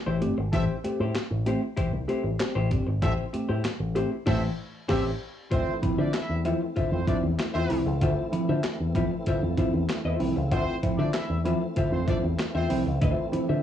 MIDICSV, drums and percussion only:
0, 0, Header, 1, 2, 480
1, 0, Start_track
1, 0, Tempo, 625000
1, 406, Time_signature, 4, 2, 24, 8
1, 10466, End_track
2, 0, Start_track
2, 0, Title_t, "Drums"
2, 167, Note_on_c, 9, 42, 68
2, 244, Note_off_c, 9, 42, 0
2, 407, Note_on_c, 9, 36, 127
2, 409, Note_on_c, 9, 42, 110
2, 484, Note_off_c, 9, 36, 0
2, 486, Note_off_c, 9, 42, 0
2, 650, Note_on_c, 9, 42, 83
2, 727, Note_off_c, 9, 42, 0
2, 882, Note_on_c, 9, 42, 100
2, 887, Note_on_c, 9, 38, 104
2, 887, Note_on_c, 9, 39, 86
2, 959, Note_off_c, 9, 42, 0
2, 964, Note_off_c, 9, 38, 0
2, 964, Note_off_c, 9, 39, 0
2, 1124, Note_on_c, 9, 42, 83
2, 1201, Note_off_c, 9, 42, 0
2, 1362, Note_on_c, 9, 42, 86
2, 1364, Note_on_c, 9, 36, 90
2, 1439, Note_off_c, 9, 42, 0
2, 1441, Note_off_c, 9, 36, 0
2, 1605, Note_on_c, 9, 42, 71
2, 1682, Note_off_c, 9, 42, 0
2, 1841, Note_on_c, 9, 42, 90
2, 1845, Note_on_c, 9, 38, 124
2, 1845, Note_on_c, 9, 39, 99
2, 1918, Note_off_c, 9, 42, 0
2, 1922, Note_off_c, 9, 38, 0
2, 1922, Note_off_c, 9, 39, 0
2, 2082, Note_on_c, 9, 42, 66
2, 2084, Note_on_c, 9, 36, 87
2, 2158, Note_off_c, 9, 42, 0
2, 2161, Note_off_c, 9, 36, 0
2, 2320, Note_on_c, 9, 36, 120
2, 2320, Note_on_c, 9, 42, 99
2, 2397, Note_off_c, 9, 36, 0
2, 2397, Note_off_c, 9, 42, 0
2, 2561, Note_on_c, 9, 42, 78
2, 2638, Note_off_c, 9, 42, 0
2, 2795, Note_on_c, 9, 42, 96
2, 2800, Note_on_c, 9, 38, 105
2, 2800, Note_on_c, 9, 39, 89
2, 2872, Note_off_c, 9, 42, 0
2, 2877, Note_off_c, 9, 38, 0
2, 2877, Note_off_c, 9, 39, 0
2, 3039, Note_on_c, 9, 42, 73
2, 3115, Note_off_c, 9, 42, 0
2, 3275, Note_on_c, 9, 49, 84
2, 3276, Note_on_c, 9, 38, 101
2, 3277, Note_on_c, 9, 36, 113
2, 3352, Note_off_c, 9, 49, 0
2, 3353, Note_off_c, 9, 36, 0
2, 3353, Note_off_c, 9, 38, 0
2, 3754, Note_on_c, 9, 49, 95
2, 3756, Note_on_c, 9, 36, 116
2, 3756, Note_on_c, 9, 38, 115
2, 3831, Note_off_c, 9, 49, 0
2, 3833, Note_off_c, 9, 36, 0
2, 3833, Note_off_c, 9, 38, 0
2, 4236, Note_on_c, 9, 36, 110
2, 4237, Note_on_c, 9, 42, 92
2, 4313, Note_off_c, 9, 36, 0
2, 4314, Note_off_c, 9, 42, 0
2, 4477, Note_on_c, 9, 42, 78
2, 4479, Note_on_c, 9, 36, 93
2, 4554, Note_off_c, 9, 42, 0
2, 4555, Note_off_c, 9, 36, 0
2, 4710, Note_on_c, 9, 42, 89
2, 4715, Note_on_c, 9, 38, 106
2, 4715, Note_on_c, 9, 39, 82
2, 4787, Note_off_c, 9, 42, 0
2, 4792, Note_off_c, 9, 38, 0
2, 4792, Note_off_c, 9, 39, 0
2, 4954, Note_on_c, 9, 42, 68
2, 5031, Note_off_c, 9, 42, 0
2, 5195, Note_on_c, 9, 42, 90
2, 5198, Note_on_c, 9, 36, 94
2, 5272, Note_off_c, 9, 42, 0
2, 5275, Note_off_c, 9, 36, 0
2, 5434, Note_on_c, 9, 36, 96
2, 5438, Note_on_c, 9, 42, 65
2, 5511, Note_off_c, 9, 36, 0
2, 5515, Note_off_c, 9, 42, 0
2, 5675, Note_on_c, 9, 42, 89
2, 5679, Note_on_c, 9, 38, 120
2, 5679, Note_on_c, 9, 39, 100
2, 5752, Note_off_c, 9, 42, 0
2, 5756, Note_off_c, 9, 38, 0
2, 5756, Note_off_c, 9, 39, 0
2, 5913, Note_on_c, 9, 46, 67
2, 5989, Note_off_c, 9, 46, 0
2, 6154, Note_on_c, 9, 42, 95
2, 6155, Note_on_c, 9, 36, 104
2, 6230, Note_off_c, 9, 42, 0
2, 6232, Note_off_c, 9, 36, 0
2, 6396, Note_on_c, 9, 42, 80
2, 6472, Note_off_c, 9, 42, 0
2, 6629, Note_on_c, 9, 42, 94
2, 6634, Note_on_c, 9, 38, 97
2, 6634, Note_on_c, 9, 39, 77
2, 6705, Note_off_c, 9, 42, 0
2, 6711, Note_off_c, 9, 38, 0
2, 6711, Note_off_c, 9, 39, 0
2, 6873, Note_on_c, 9, 36, 94
2, 6876, Note_on_c, 9, 42, 73
2, 6950, Note_off_c, 9, 36, 0
2, 6952, Note_off_c, 9, 42, 0
2, 7113, Note_on_c, 9, 42, 90
2, 7117, Note_on_c, 9, 36, 85
2, 7190, Note_off_c, 9, 42, 0
2, 7194, Note_off_c, 9, 36, 0
2, 7353, Note_on_c, 9, 36, 94
2, 7355, Note_on_c, 9, 42, 67
2, 7430, Note_off_c, 9, 36, 0
2, 7431, Note_off_c, 9, 42, 0
2, 7595, Note_on_c, 9, 42, 96
2, 7599, Note_on_c, 9, 38, 110
2, 7599, Note_on_c, 9, 39, 95
2, 7672, Note_off_c, 9, 42, 0
2, 7676, Note_off_c, 9, 38, 0
2, 7676, Note_off_c, 9, 39, 0
2, 7834, Note_on_c, 9, 46, 64
2, 7911, Note_off_c, 9, 46, 0
2, 8076, Note_on_c, 9, 36, 113
2, 8076, Note_on_c, 9, 42, 106
2, 8152, Note_off_c, 9, 36, 0
2, 8153, Note_off_c, 9, 42, 0
2, 8318, Note_on_c, 9, 42, 75
2, 8319, Note_on_c, 9, 36, 93
2, 8395, Note_off_c, 9, 42, 0
2, 8396, Note_off_c, 9, 36, 0
2, 8550, Note_on_c, 9, 42, 91
2, 8555, Note_on_c, 9, 38, 102
2, 8555, Note_on_c, 9, 39, 86
2, 8627, Note_off_c, 9, 42, 0
2, 8632, Note_off_c, 9, 38, 0
2, 8632, Note_off_c, 9, 39, 0
2, 8798, Note_on_c, 9, 42, 72
2, 8874, Note_off_c, 9, 42, 0
2, 9034, Note_on_c, 9, 42, 91
2, 9038, Note_on_c, 9, 36, 93
2, 9110, Note_off_c, 9, 42, 0
2, 9115, Note_off_c, 9, 36, 0
2, 9275, Note_on_c, 9, 36, 102
2, 9278, Note_on_c, 9, 42, 67
2, 9352, Note_off_c, 9, 36, 0
2, 9355, Note_off_c, 9, 42, 0
2, 9514, Note_on_c, 9, 42, 95
2, 9518, Note_on_c, 9, 38, 119
2, 9518, Note_on_c, 9, 39, 97
2, 9591, Note_off_c, 9, 42, 0
2, 9595, Note_off_c, 9, 38, 0
2, 9595, Note_off_c, 9, 39, 0
2, 9754, Note_on_c, 9, 46, 72
2, 9831, Note_off_c, 9, 46, 0
2, 9996, Note_on_c, 9, 42, 106
2, 9999, Note_on_c, 9, 36, 119
2, 10073, Note_off_c, 9, 42, 0
2, 10075, Note_off_c, 9, 36, 0
2, 10239, Note_on_c, 9, 42, 77
2, 10316, Note_off_c, 9, 42, 0
2, 10466, End_track
0, 0, End_of_file